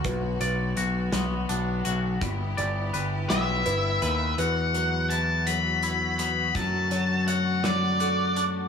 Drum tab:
HH |xxxxxx|xxxxxx|xxxxxx|xxxxxx|
SD |---o--|---o--|------|---o--|
BD |o-----|o-----|------|o-----|